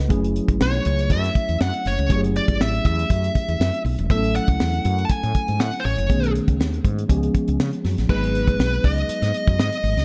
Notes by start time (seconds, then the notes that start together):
Already playing: B3 C#4 D#4 G#4 A4 B4 D#5 F#5
0.08 F#1 F#3 A3 C#4 E4 G#4, kick, closed hi-hat
0.24 closed hi-hat
0.36 closed hi-hat
0.48 G#1, kick, closed hi-hat
0.61 B1 C#5, snare
0.74 closed hi-hat
0.85 C#2, closed hi-hat
0.99 closed hi-hat
1.10 F#2 E5, kick, closed hi-hat
1.23 snare, closed hi-hat
1.35 kick, closed hi-hat
1.48 E2, closed hi-hat
1.61 F#2 F#5, snare
1.73 closed hi-hat
1.85 F#1 C#5, snare, open hi-hat
1.99 C#2, closed hi-hat
2.08 F#1 F#3 A3 C#4 E4 G4, kick, closed hi-hat
2.12 C#5
2.16 G#4
2.24 closed hi-hat
2.35 D5, closed hi-hat
2.48 G#1, kick, closed hi-hat
2.60 A1 E5, snare
2.74 closed hi-hat
2.85 E2 E5, kick, closed hi-hat
2.99 closed hi-hat
3.10 F#2, kick, closed hi-hat
3.24 closed hi-hat
3.35 kick, closed hi-hat
3.48 E2, closed hi-hat
3.60 F#2, snare
3.74 closed hi-hat
3.85 B1, open hi-hat
3.99 E1, closed hi-hat
4.09 A1 F#3 A3 B3 E4 A4 E5, kick, closed hi-hat
4.16 C#4
4.24 closed hi-hat
4.35 F#5, closed hi-hat
4.48 C#2, kick, closed hi-hat
4.60 E2, snare
4.73 closed hi-hat
4.84 F#2, closed hi-hat
4.98 closed hi-hat
5.05 A5
5.09 G#5, kick, closed hi-hat
5.23 A2, closed hi-hat
5.34 kick, closed hi-hat
5.48 G#2, closed hi-hat
5.60 A2 F#5, snare
5.73 closed hi-hat
5.80 C5
5.85 A1 C#5, open hi-hat
5.98 F#1, closed hi-hat
6.08 B1 D3 A3 B3 C#4 G#4, kick, closed hi-hat
6.14 D#3
6.24 closed hi-hat
6.35 closed hi-hat
6.48 C#2, kick, closed hi-hat
6.60 D#2, snare
6.73 closed hi-hat
6.84 G#2, kick, closed hi-hat
6.98 closed hi-hat
7.08 C#2 F3 G#3 B3 C#4 G4, kick, closed hi-hat
7.17 G#4
7.23 closed hi-hat
7.34 kick, closed hi-hat
7.47 C#2, closed hi-hat
7.60 C#3, snare
7.73 closed hi-hat
7.84 F#2, snare, open hi-hat
7.98 A1, snare, closed hi-hat
8.08 G#1 F#3 G#3 B3 D#4 G#4 B4, kick, crash
8.23 closed hi-hat
8.35 closed hi-hat
8.47 A1, kick, closed hi-hat
8.59 B1, snare
8.73 closed hi-hat
8.84 C#2 D#5, kick, open hi-hat
8.98 closed hi-hat
9.09 muted fretless electric bass stroke, closed hi-hat
9.22 G#2, snare, closed hi-hat
9.34 closed hi-hat
9.47 F#2, kick, closed hi-hat
9.58 G#2 D#5, snare
9.72 closed hi-hat
9.83 G#1, open hi-hat
9.97 C#2, snare, closed hi-hat